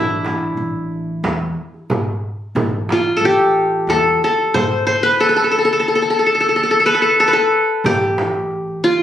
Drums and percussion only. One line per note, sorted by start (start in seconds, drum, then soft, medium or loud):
0.09 darbuka ka soft
0.25 darbuka tek medium
0.25 frame drum medium
0.92 darbuka ka soft
1.24 darbuka tek medium
1.24 frame drum medium
1.58 darbuka ka soft
1.74 darbuka ka soft
1.90 frame drum medium
1.90 darbuka dum medium
2.08 darbuka ka soft
2.56 frame drum medium
2.56 darbuka dum medium
2.74 darbuka ka soft
2.89 darbuka tek medium
2.89 frame drum medium
3.57 darbuka ka soft
3.73 darbuka ka soft
3.89 darbuka tek medium
3.89 frame drum medium
4.23 darbuka ka soft
4.39 darbuka ka soft
4.54 frame drum medium
4.54 darbuka dum medium
4.72 darbuka ka soft
7.85 frame drum medium
7.85 darbuka dum medium
8.02 darbuka ka soft
8.18 darbuka tek medium
8.18 frame drum medium
8.51 darbuka ka soft
8.68 darbuka ka soft